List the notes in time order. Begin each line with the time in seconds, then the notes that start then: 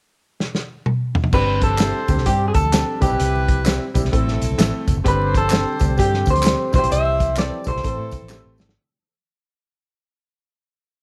0.40 snare
0.55 snare
0.86 mid tom
1.15 floor tom
1.24 floor tom
1.33 G1 G3 C4 D4 G4 B4 C5, kick, crash, tambourine, muted conga, low conga
1.47 muted conga
1.61 A4, kick, closed hi-hat, high conga
1.78 G3 C4 D4 E4, snare, clap, closed hi-hat, tambourine
2.08 D2 G3 C4 D4 G4, kick, closed hi-hat, tambourine, low conga
2.17 C2, snare
2.26 G2 G3 C4 D4 G4, kick, closed hi-hat, tambourine
2.48 G#4
2.54 D2 A4, kick, closed hi-hat, tambourine
2.65 high conga
2.72 G3 C4 D4 G4, snare, clap, closed hi-hat, tambourine, muted conga, high conga
3.00 C2 G3 C4 D#4 E4 G4 B4, kick, closed hi-hat, tambourine, low conga
3.07 E4
3.11 B1
3.20 C2, closed hi-hat, tambourine, low conga
3.36 muted conga
3.48 kick, closed hi-hat, high conga
3.65 G3 C4 E4 G4, snare, clap, closed hi-hat, tambourine
3.94 B1 G3 C4 E4 G4, kick, closed hi-hat, tambourine, low conga
4.05 C2, snare
4.12 A1 A3 C4 E4 A4, kick, closed hi-hat
4.28 snare
4.42 B1, closed hi-hat, tambourine
4.50 C2, high conga
4.58 A1 A3 C4 E4 A4, snare, clap, closed hi-hat, tambourine, muted conga, high conga
4.88 F1, kick, closed hi-hat, tambourine, low conga
4.97 F#1
5.02 G1 D3 G3 C4 D4 G4 C5, kick, closed hi-hat, tambourine
5.07 B4, muted conga, low conga
5.22 muted conga
5.34 A4, kick, closed hi-hat, tambourine, high conga
5.50 G3 C4 D4 G4, snare, clap, closed hi-hat, tambourine
5.68 muted conga
5.79 D2 G3 C4 D4 G4, kick, closed hi-hat, tambourine, low conga
5.90 C2
5.97 G2 G3 C4 D4 G4, kick, closed hi-hat, tambourine
6.14 snare, muted conga
6.26 D2, kick, closed hi-hat, tambourine
6.30 C5
6.36 closed hi-hat, high conga
6.43 G3 C4 D4 G4, clap, closed hi-hat, tambourine, muted conga, high conga
6.47 snare
6.72 C2 E3 G3 C4 E4 F#4 G4 C5, kick, closed hi-hat, tambourine, low conga
6.78 G4
6.83 B1, closed hi-hat
6.91 C2 E5, closed hi-hat, tambourine, low conga
7.05 muted conga
7.20 kick, closed hi-hat, tambourine, high conga
7.36 G3 C4 E4 A4 D5, snare, clap, closed hi-hat, tambourine
7.52 muted conga, high conga
7.64 B1 G3 C4 E4 A4, kick, closed hi-hat, tambourine, low conga
7.68 C5
7.76 C2, snare
7.83 A1 A3 C4 E4 A4, kick, closed hi-hat, tambourine, muted conga
7.98 A2
8.11 C2, kick, closed hi-hat, tambourine
8.22 A1, high conga
8.29 A3 C4 E4 G4, snare, clap, tambourine, high conga
8.46 A1
8.58 snare, tambourine, low conga
8.69 snare